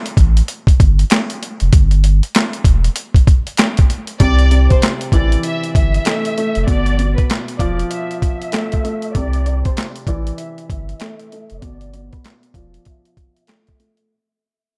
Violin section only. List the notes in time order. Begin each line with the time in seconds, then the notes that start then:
4.20 D5
4.72 C5
5.13 D5
5.45 E5
5.75 E5
6.67 D5
7.16 B4
7.59 D5
7.92 E5
8.22 E5
9.15 D5
9.64 C5
10.07 D5
10.38 E5
10.70 E5
11.62 D5
12.12 B4
12.56 D5
12.87 E5
13.17 E5